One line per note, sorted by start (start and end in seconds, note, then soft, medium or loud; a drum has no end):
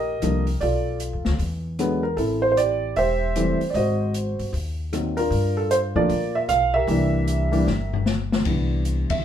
0.00 0.19 A#1 medium
0.00 0.58 G4 medium
0.00 0.58 A#4 medium
0.00 0.43 D#5 loud
0.22 0.59 C2 medium
0.22 0.44 D3 medium
0.22 0.45 F3 medium
0.22 0.45 G3 soft
0.22 0.45 A#3 medium
0.22 cross-stick medium
0.22 closed hi-hat medium
0.47 open hi-hat soft
0.61 1.10 B1 medium
0.61 1.36 F4 medium
0.61 1.36 A4 medium
0.61 0.97 D5 medium
0.61 open hi-hat soft
1.00 closed hi-hat medium
1.13 1.25 F2 medium
1.25 1.38 D2 medium
1.25 snare medium
1.39 2.13 E2 medium
1.39 open hi-hat soft
1.79 2.01 D3 medium
1.79 2.02 F#3 medium
1.79 2.02 G#3 medium
1.79 2.02 B3 medium
1.79 cross-stick medium
1.79 closed hi-hat soft
2.03 2.18 A#4 medium
2.17 2.92 A1 medium
2.17 2.93 C4 medium
2.17 2.93 E4 medium
2.17 2.40 A4 medium
2.17 open hi-hat soft
2.42 2.50 C5 medium
2.52 2.57 C5 medium
2.57 2.97 G4 medium
2.57 2.94 D5 medium
2.57 closed hi-hat medium
2.96 3.56 E1 medium
2.96 3.72 G4 medium
2.96 3.72 C5 medium
2.96 3.57 E5 loud
2.96 open hi-hat soft
3.36 3.58 E3 medium
3.36 3.58 G3 medium
3.36 3.59 A3 medium
3.36 3.59 C4 medium
3.36 cross-stick medium
3.36 closed hi-hat medium
3.60 muted upright bass stroke soft
3.60 open hi-hat soft
3.70 4.35 G#1 medium
3.70 3.75 D5 medium
3.75 4.50 F#4 medium
3.75 4.50 C5 medium
3.75 4.12 D#5 medium
3.75 open hi-hat soft
4.14 closed hi-hat medium
4.39 4.52 G1 medium
4.39 open hi-hat soft
4.53 5.27 D#2 medium
4.53 open hi-hat soft
4.92 5.15 D#3 medium
4.92 5.15 F#3 soft
4.92 5.15 A#3 soft
4.92 5.16 C4 medium
4.92 cross-stick medium
4.92 closed hi-hat medium
5.17 5.93 D4 medium
5.17 5.92 F4 medium
5.17 5.57 A#4 medium
5.17 open hi-hat soft
5.30 5.91 G2 medium
5.30 open hi-hat soft
5.57 5.71 A4 medium
5.71 5.76 C5 medium
5.71 closed hi-hat medium
5.96 6.09 F2 medium
5.96 6.09 F3 medium
5.96 6.09 A3 medium
5.96 6.09 A#3 medium
5.96 6.09 D4 medium
5.96 6.71 F4 medium
5.96 6.71 A#4 medium
5.96 6.36 D5 medium
5.96 kick medium
6.09 6.46 A#2 medium
6.09 open hi-hat soft
6.35 6.40 E5 medium
6.48 6.85 B1 medium
6.48 6.75 F5 loud
6.48 cross-stick medium
6.48 closed hi-hat medium
6.74 8.03 G4 medium
6.74 8.03 A#4 medium
6.74 8.02 E5 loud
6.87 7.63 C2 medium
6.87 7.48 E3 medium
6.87 7.48 G3 medium
6.87 7.48 A#3 medium
6.87 7.48 D4 medium
6.87 open hi-hat soft
7.27 closed hi-hat medium
7.52 7.65 E3 medium
7.52 7.65 G3 medium
7.52 7.66 A#3 medium
7.52 7.66 D4 medium
7.52 open hi-hat soft
7.67 8.42 G1 medium
7.67 snare soft
7.93 floor tom medium
8.06 snare medium
8.32 snare medium
8.45 9.06 C2 medium
8.45 9.25 E3 soft
8.45 9.25 G3 soft
8.45 9.25 B3 soft
8.45 9.25 D4 medium
8.45 kick medium
8.45 ride medium
8.85 closed hi-hat soft
9.10 9.25 E5 medium
9.10 muted upright bass stroke soft
9.10 kick medium
9.10 ride medium